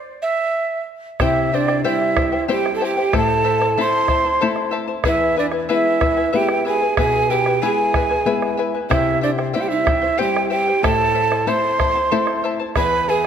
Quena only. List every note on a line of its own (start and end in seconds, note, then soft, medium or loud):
0.22 0.83 E5 medium
1.20 1.56 E5 medium
1.54 1.84 D5 medium
1.84 2.44 E5 medium
2.51 2.73 G5 medium
2.76 2.86 A5 medium
2.85 3.15 G5 medium
3.18 3.83 A5 loud
3.81 4.76 C6 loud
5.07 5.36 E5 medium
5.39 5.46 D5 medium
5.73 6.37 E5 medium
6.36 6.67 G5 medium
6.68 6.97 G#5 medium
6.99 7.32 G#5 loud
7.30 7.64 G5 medium
7.62 8.59 G#5 medium
8.91 9.21 E5 medium
9.23 9.30 D5 medium
9.54 9.63 E5 medium
9.61 9.70 G5 medium
9.68 10.20 E5 medium
10.19 10.49 G5 medium
10.50 10.85 G5 medium
10.84 11.50 A5 loud
11.48 12.44 C6 medium
12.76 13.11 B5 loud
13.09 13.27 G#5 medium